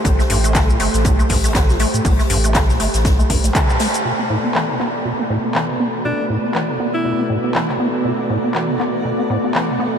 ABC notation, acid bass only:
X:1
M:4/4
L:1/16
Q:"Swing 16ths" 1/4=120
K:Bphr
V:1 name="Acid bass" clef=bass
A,, A, G,, A, D, A,, A, z A,, A, G,, A, D, A,, A, z | A,, A, G,, A, D, A,, A, z A,, A, G,, A, D, A,, A, z | B,, B, A,, B, E, B,, B, z B,, B, A,, B, E, B,, B, z | B,, B, A,, B, E, B,, B, z B,, B, A,, B, E, B,, B, z |
B,, B, A,, B, E, B,, B, z B,, B, A,, B, E, B,, B, z |]